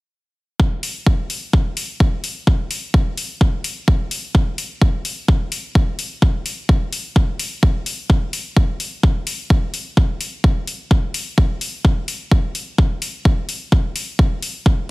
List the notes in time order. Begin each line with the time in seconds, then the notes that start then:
0.60 kick
0.83 open hi-hat
1.06 kick
1.30 open hi-hat
1.53 kick
1.77 open hi-hat
2.00 kick
2.24 open hi-hat
2.47 kick
2.71 open hi-hat
2.94 kick
3.17 open hi-hat
3.41 kick
3.64 open hi-hat
3.88 kick
4.11 open hi-hat
4.35 kick
4.58 open hi-hat
4.82 kick
5.05 open hi-hat
5.28 kick
5.52 open hi-hat
5.75 kick
5.99 open hi-hat
6.22 kick
6.46 open hi-hat
6.69 kick
6.93 open hi-hat
7.16 kick
7.39 open hi-hat
7.63 kick
7.86 open hi-hat
8.10 kick
8.33 open hi-hat
8.57 kick
8.80 open hi-hat
9.03 kick
9.27 open hi-hat
9.50 kick
9.74 open hi-hat
9.97 kick
10.21 open hi-hat
10.44 kick
10.67 open hi-hat
10.91 kick
11.14 open hi-hat
11.38 kick
11.61 open hi-hat
11.85 kick
12.08 open hi-hat
12.31 kick
12.55 open hi-hat
12.78 kick
13.02 open hi-hat
13.25 kick
13.49 open hi-hat
13.72 kick
13.96 open hi-hat
14.19 kick
14.42 open hi-hat
14.66 kick